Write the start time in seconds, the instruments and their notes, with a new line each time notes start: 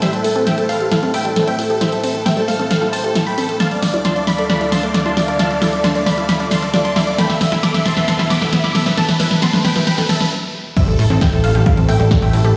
Already playing: analog synth pad A3 E4 B4 C5 G5, riser
0.02 synth arpeggio sound G3, supersaw synth C5 E5, synth pluck E5, snare, closed hi-hat
0.13 synth pluck A4, supersaw synth A4, closed hi-hat
0.24 synth arpeggio sound A3, supersaw synth A4, synth pluck A4, open hi-hat
0.35 synth arpeggio sound C4, synth pluck A4, supersaw synth A4, closed hi-hat
0.47 synth arpeggio sound E4, supersaw synth E5 G5, synth pluck G5, snare, closed hi-hat
0.58 supersaw synth A4, synth pluck A4, closed hi-hat
0.69 supersaw synth A4 F5, synth pluck F5, open hi-hat
0.80 synth arpeggio sound G4, synth pluck A4, supersaw synth A4, closed hi-hat
0.91 synth arpeggio sound E4, supersaw synth A4 F5, synth pluck F5, snare, closed hi-hat
1.03 synth arpeggio sound C4, supersaw synth A4, synth pluck A4, closed hi-hat
1.14 synth arpeggio sound A3, supersaw synth E5 G5, synth pluck G5, open hi-hat
1.25 synth arpeggio sound G3, synth pluck A4, supersaw synth A4, closed hi-hat
1.36 synth arpeggio sound A3, supersaw synth A4, synth pluck A4, snare, closed hi-hat
1.47 synth arpeggio sound C4, supersaw synth E5 G5, synth pluck G5, closed hi-hat
1.59 synth arpeggio sound E4, synth pluck A4, supersaw synth A4, open hi-hat
1.70 synth arpeggio sound G4, synth pluck A4, supersaw synth A4, closed hi-hat
1.81 synth arpeggio sound E4, supersaw synth C5 E5, synth pluck E5, snare, closed hi-hat
1.92 synth pluck A4, supersaw synth A4, closed hi-hat
2.03 synth arpeggio sound C4, synth pluck A4, supersaw synth A4, open hi-hat
2.15 synth pluck A4, supersaw synth A4, closed hi-hat
2.26 synth arpeggio sound A3, supersaw synth E5 G5, synth pluck G5, snare, closed hi-hat
2.37 synth arpeggio sound G3, supersaw synth A4, synth pluck A4, closed hi-hat
2.48 synth arpeggio sound A3, supersaw synth A4 F5, synth pluck F5, open hi-hat
2.59 synth arpeggio sound C4, supersaw synth A4, synth pluck A4, closed hi-hat
2.70 supersaw synth A4 F5, synth pluck F5, snare, closed hi-hat
2.82 synth arpeggio sound E4, synth pluck A4, supersaw synth A4, closed hi-hat
2.93 supersaw synth C5 A5, synth pluck A5, open hi-hat
3.04 synth arpeggio sound G4, synth pluck A4, supersaw synth A4, closed hi-hat
3.15 synth arpeggio sound E4, supersaw synth A4, synth pluck A4, snare, closed hi-hat
3.26 supersaw synth G5 B5, synth pluck B5, closed hi-hat
3.38 synth arpeggio sound C4, supersaw synth A4, synth pluck A4, open hi-hat
3.49 supersaw synth A4, synth pluck A4, closed hi-hat
3.60 analog synth pad D3 D4 A4 E5 F5, synth arpeggio sound A3, supersaw synth F5 A5, synth pluck A5, snare, closed hi-hat
3.71 supersaw synth D5, synth pluck D5, closed hi-hat
3.82 synth arpeggio sound D4, supersaw synth D5, synth pluck D5, snare, open hi-hat
3.94 synth arpeggio sound E4, synth pluck D5, supersaw synth D5, closed hi-hat
4.05 synth arpeggio sound F4, supersaw synth A5 C6, synth pluck C6, snare, closed hi-hat
4.16 synth pluck D5, supersaw synth D5, closed hi-hat
4.27 supersaw synth D5 B5, synth pluck B5, snare, open hi-hat
4.38 synth arpeggio sound A4, supersaw synth D5, synth pluck D5, closed hi-hat
4.50 synth arpeggio sound F4, supersaw synth D5 B5, synth pluck B5, snare, closed hi-hat
4.61 synth arpeggio sound E4, supersaw synth D5, synth pluck D5, closed hi-hat
4.72 synth arpeggio sound D4, supersaw synth A5 C6, synth pluck C6, snare, open hi-hat
4.83 synth arpeggio sound A3, supersaw synth D5, synth pluck D5, closed hi-hat
4.94 synth arpeggio sound D4, synth pluck D5, supersaw synth D5, snare, closed hi-hat
5.06 synth arpeggio sound E4, supersaw synth A5 C6, synth pluck C6, closed hi-hat
5.17 synth arpeggio sound F4, supersaw synth D5, synth pluck D5, snare, open hi-hat
5.28 synth arpeggio sound A4, supersaw synth D5, synth pluck D5, closed hi-hat
5.39 synth arpeggio sound F4, supersaw synth F5 A5, synth pluck A5, snare, closed hi-hat
5.50 supersaw synth D5, synth pluck D5, closed hi-hat
5.62 synth arpeggio sound E4, supersaw synth D5, synth pluck D5, snare, open hi-hat
5.73 supersaw synth D5, synth pluck D5, closed hi-hat
5.84 synth arpeggio sound D4, supersaw synth A5 C6, synth pluck C6, snare, closed hi-hat
5.95 synth arpeggio sound A3, supersaw synth D5, synth pluck D5, closed hi-hat
6.06 synth arpeggio sound D4, supersaw synth D5 B5, synth pluck B5, snare, open hi-hat
6.18 synth arpeggio sound E4, supersaw synth D5, synth pluck D5, closed hi-hat
6.29 supersaw synth D5 B5, synth pluck B5, snare, closed hi-hat
6.40 synth arpeggio sound F4, supersaw synth D5, synth pluck D5, closed hi-hat
6.51 supersaw synth A5 C6, synth pluck C6, snare, open hi-hat
6.62 synth arpeggio sound A4, supersaw synth D5, synth pluck D5, closed hi-hat
6.74 synth arpeggio sound F4, supersaw synth D5, synth pluck D5, snare, closed hi-hat
6.85 supersaw synth A5 C6, synth pluck C6, closed hi-hat
6.96 synth arpeggio sound E4, supersaw synth D5, synth pluck D5, snare, open hi-hat
7.07 supersaw synth D5, synth pluck D5, closed hi-hat
7.18 analog synth pad E3 B3 B5, synth arpeggio sound A3, supersaw synth G5 B5, synth pluck B5, snare, closed hi-hat
7.30 synth pluck E5, supersaw synth E5, snare, closed hi-hat
7.41 synth arpeggio sound B3, synth pluck E5, supersaw synth E5, snare, open hi-hat
7.52 synth arpeggio sound E4, synth pluck E5, supersaw synth E5, snare, closed hi-hat
7.63 synth arpeggio sound A4, supersaw synth B5 D6, synth pluck D6, snare, closed hi-hat
7.74 synth pluck E5, supersaw synth E5, snare, closed hi-hat
7.85 supersaw synth A5 C6, synth pluck C6, snare, open hi-hat
7.97 synth arpeggio sound B4, synth pluck E5, supersaw synth E5, snare, closed hi-hat
8.08 synth arpeggio sound A4, supersaw synth A5 C6, synth pluck C6, snare, closed hi-hat
8.19 synth arpeggio sound E4, synth pluck E5, supersaw synth E5, snare, closed hi-hat
8.30 synth arpeggio sound B3, supersaw synth B5 D6, synth pluck D6, snare, open hi-hat
8.41 synth arpeggio sound A3, synth pluck E5, supersaw synth E5, snare, closed hi-hat
8.53 synth arpeggio sound B3, synth pluck E5, supersaw synth E5, snare, closed hi-hat
8.64 synth arpeggio sound E4, supersaw synth B5 D6, synth pluck D6, snare, closed hi-hat
8.75 synth arpeggio sound A4, synth pluck E5, supersaw synth E5, snare, open hi-hat
8.86 synth arpeggio sound B4, synth pluck E5, supersaw synth E5, snare, closed hi-hat
8.97 synth arpeggio sound A4, supersaw synth E5 A5, analog synth pad A5, synth pluck A5, snare, closed hi-hat
9.08 synth pluck B4, supersaw synth B4, snare, closed hi-hat
9.20 synth arpeggio sound E4, synth pluck B4, supersaw synth B4, snare, open hi-hat
9.31 synth pluck B4, supersaw synth B4, snare, closed hi-hat
9.42 synth arpeggio sound B3, supersaw synth A5 C6, synth pluck C6, snare, closed hi-hat
9.53 synth arpeggio sound A3, supersaw synth B4, synth pluck B4, snare, closed hi-hat
9.65 synth arpeggio sound B3, supersaw synth G5 B5, synth pluck B5, snare, open hi-hat
9.76 synth arpeggio sound E4, synth pluck B4, supersaw synth B4, snare, closed hi-hat
9.87 supersaw synth G5 B5, synth pluck B5, snare, closed hi-hat
9.98 synth arpeggio sound A4, synth pluck B4, supersaw synth B4, snare, closed hi-hat
10.09 supersaw synth E5 A5, synth pluck A5, snare, open hi-hat
10.20 synth pluck B4, synth arpeggio sound B4, supersaw synth B4, snare, closed hi-hat
10.76 synth arpeggio sound G3, analog synth pad A3 E4 G4 B4 C5, supersaw synth C5 E5, synth pluck E5, kick, closed hi-hat, crash, impact
10.88 analog synth bass A1, synth pluck A4, supersaw synth A4, closed hi-hat
10.99 analog synth bass A2, synth arpeggio sound A3, synth pluck A4, supersaw synth A4, open hi-hat
11.10 analog synth bass A1, synth arpeggio sound C4, synth pluck A4, supersaw synth A4, closed hi-hat
11.21 synth arpeggio sound E4, supersaw synth E5 G5, synth pluck G5, kick, snare, closed hi-hat
11.32 analog synth bass A1, supersaw synth A4, synth pluck A4, closed hi-hat
11.44 analog synth bass A1, supersaw synth A4 F5, synth pluck F5, open hi-hat
11.55 analog synth bass A1, synth arpeggio sound G4, supersaw synth A4, synth pluck A4, closed hi-hat
11.66 synth arpeggio sound E4, supersaw synth A4 F5, synth pluck F5, kick, closed hi-hat
11.77 analog synth bass A1, synth arpeggio sound C4, synth pluck A4, supersaw synth A4, closed hi-hat
11.88 analog synth bass A1, synth arpeggio sound A3, supersaw synth E5 G5, synth pluck G5, open hi-hat
12.00 analog synth bass A1, synth arpeggio sound G3, synth pluck A4, supersaw synth A4, closed hi-hat
12.11 synth arpeggio sound A3, synth pluck A4, supersaw synth A4, kick, snare, closed hi-hat
12.22 analog synth bass A1, synth arpeggio sound C4, supersaw synth E5 G5, synth pluck G5, closed hi-hat
12.33 analog synth bass A1, synth arpeggio sound E4, synth pluck A4, supersaw synth A4, open hi-hat
12.44 analog synth bass A1, synth arpeggio sound G4, synth pluck A4, supersaw synth A4, closed hi-hat